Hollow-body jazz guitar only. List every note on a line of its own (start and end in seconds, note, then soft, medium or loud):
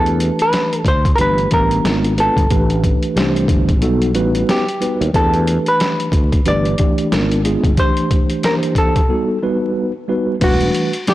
0.00 0.41 A4 medium
0.42 0.88 B4 medium
0.88 1.15 C5 medium
1.16 1.20 A#4 medium
1.21 1.53 B4 loud
1.54 2.20 A#4 medium
2.20 3.47 A4 medium
4.51 5.17 G4 medium
5.16 5.68 A4 medium
5.68 6.47 B4 medium
6.48 7.75 D5 loud
7.79 8.41 C5 medium
8.45 8.54 A#4 medium
8.78 10.05 A4 medium
10.44 11.09 F#4 medium
11.09 11.14 G4 medium